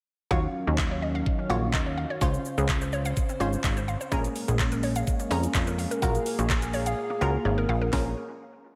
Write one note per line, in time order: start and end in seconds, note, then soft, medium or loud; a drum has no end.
0.31 0.47 D#2 loud
0.31 2.19 D#3 medium
0.31 0.42 F#3 loud
0.31 2.19 F#3 medium
0.31 2.19 C#4 medium
0.31 1.12 F4 medium
0.31 1.12 F#4 medium
0.31 1.12 C#5 medium
0.31 4.08 F5 medium
0.31 kick loud
0.67 1.23 D#2 medium
0.67 0.77 F#4 medium
0.78 0.89 D#5 loud
0.78 kick loud
0.78 clap loud
0.91 1.01 C#5 medium
1.02 1.13 D#5 medium
1.15 1.25 F5 medium
1.26 kick loud
1.39 1.48 C#4 medium
1.50 1.75 A#1 medium
1.50 2.11 F4 medium
1.50 1.61 F4 medium
1.50 2.11 F#4 medium
1.50 2.11 C#5 medium
1.74 2.06 D#2 medium
1.74 1.85 D#5 medium
1.74 kick loud
1.74 clap loud
1.86 1.96 C#5 medium
1.98 2.08 F5 medium
2.10 2.20 C#5 medium
2.21 2.37 C#2 loud
2.21 4.10 C#3 medium
2.21 2.32 G#3 medium
2.21 3.02 C#4 medium
2.21 3.03 F4 medium
2.21 4.10 C5 medium
2.21 3.03 C5 loud
2.21 kick loud
2.21 shaker medium
2.34 shaker soft
2.45 shaker medium
2.58 3.13 C#2 medium
2.58 2.67 G#4 medium
2.58 shaker medium
2.69 2.80 C#5 loud
2.69 kick loud
2.69 clap loud
2.69 shaker medium
2.81 2.91 C5 medium
2.81 shaker medium
2.93 3.04 C#5 loud
2.93 shaker soft
3.05 3.15 F5 medium
3.05 shaker medium
3.17 kick loud
3.17 shaker medium
3.29 3.39 C4 medium
3.29 shaker medium
3.40 3.56 G#1 medium
3.40 4.01 C#4 medium
3.40 4.02 F4 medium
3.40 3.51 F4 medium
3.40 4.02 C5 medium
3.40 shaker medium
3.53 shaker medium
3.64 3.96 G#1 medium
3.64 3.75 C#5 loud
3.64 kick loud
3.64 clap loud
3.64 shaker medium
3.77 3.86 C5 medium
3.77 shaker soft
3.88 3.99 F5 medium
3.88 shaker medium
4.01 4.10 C5 medium
4.01 shaker medium
4.12 4.28 A#1 loud
4.12 6.00 G#3 medium
4.12 4.23 G#3 medium
4.12 7.89 A#3 medium
4.12 4.93 C#4 medium
4.12 6.00 C#4 medium
4.12 4.93 G#4 medium
4.12 4.93 A#4 loud
4.12 kick loud
4.12 shaker medium
4.24 closed hi-hat soft
4.24 shaker soft
4.36 open hi-hat medium
4.36 shaker medium
4.48 5.04 A#1 medium
4.48 4.58 G#4 medium
4.48 closed hi-hat medium
4.48 shaker medium
4.59 4.70 C#5 loud
4.59 kick loud
4.59 clap loud
4.59 shaker medium
4.72 4.82 A#4 medium
4.72 closed hi-hat medium
4.72 shaker medium
4.83 4.94 C#5 loud
4.83 open hi-hat medium
4.83 shaker soft
4.96 5.06 F5 medium
4.96 closed hi-hat medium
4.96 shaker medium
5.07 kick loud
5.07 shaker medium
5.20 5.29 A#3 medium
5.20 closed hi-hat medium
5.20 shaker medium
5.31 5.47 F2 medium
5.31 5.92 C#4 medium
5.31 5.42 F4 medium
5.31 5.92 G#4 medium
5.31 5.92 A#4 medium
5.31 open hi-hat medium
5.31 shaker medium
5.43 closed hi-hat medium
5.43 shaker medium
5.55 5.87 F2 medium
5.55 5.66 C#5 loud
5.55 kick loud
5.55 clap loud
5.55 shaker medium
5.67 5.77 A#4 medium
5.67 closed hi-hat medium
5.67 shaker medium
5.78 5.89 F5 medium
5.78 open hi-hat medium
5.78 shaker medium
5.91 6.01 A#4 medium
5.91 closed hi-hat medium
5.91 shaker medium
6.02 6.18 A#1 loud
6.02 6.13 F#3 medium
6.02 6.83 F4 medium
6.02 6.84 F#4 medium
6.02 7.91 G#4 medium
6.02 6.84 A#4 medium
6.02 7.91 F5 medium
6.02 kick loud
6.02 shaker medium
6.15 closed hi-hat soft
6.15 shaker soft
6.26 open hi-hat medium
6.26 shaker medium
6.39 6.94 A#1 medium
6.39 6.48 F#4 medium
6.39 closed hi-hat medium
6.39 shaker medium
6.50 6.61 C#5 loud
6.50 kick loud
6.50 clap loud
6.50 shaker medium
6.62 6.72 A#4 medium
6.62 closed hi-hat medium
6.62 shaker medium
6.73 6.85 C#5 medium
6.73 open hi-hat medium
6.73 shaker soft
6.86 6.96 F5 medium
6.86 closed hi-hat medium
6.86 shaker medium
7.10 7.20 A#3 medium
7.21 7.37 C#2 medium
7.21 7.82 F4 medium
7.21 7.32 F4 medium
7.21 7.83 F#4 medium
7.21 7.83 A#4 loud
7.45 7.67 G#1 medium
7.45 7.56 C#5 loud
7.58 7.67 A#4 medium
7.69 7.90 A#1 medium
7.69 7.80 F5 medium
7.82 7.91 A#4 medium
7.93 8.15 G#3 medium
7.93 8.15 A#3 medium
7.93 8.15 C#4 medium
7.93 8.15 F4 medium
7.93 8.15 G#4 medium
7.93 8.15 A#4 loud
7.93 8.15 C#5 medium
7.93 kick loud
7.93 snare loud
7.93 open hi-hat medium